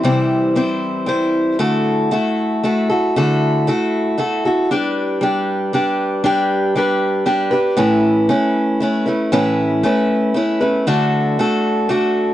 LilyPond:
\new Staff \with { instrumentName = "Steel-string acoustic guitar" } { \time 3/4 \key a \mixolydian \tempo 4 = 116 <c e g c' e' c''>4 <g c' e' c''>4 <g c' e' c''>4 | <d a e' fis' a'>4 <a e' fis' a'>4 <a e' fis' a'>8 <e' fis' a'>8 | <d a e' fis' a'>4 <a e' fis' a'>4 <a e' fis' a'>8 <e' fis' a'>8 | <g d' g' b'>4 <g d' g' b'>4 <g d' g' b'>4 |
<g d' g' b'>4 <g d' g' b'>4 <g d' g' b'>8 <d' g' b'>8 | <a, e a cis' e' b'>4 <a cis' e' b'>4 <a cis' e' b'>8 <a cis' e' b'>8 | <a, e a cis' e' b'>4 <a cis' e' b'>4 <a cis' e' b'>8 <a cis' e' b'>8 | \key d \major <d a d' fis' a'>4 <a d' fis' a'>4 <a d' fis' a'>4 | }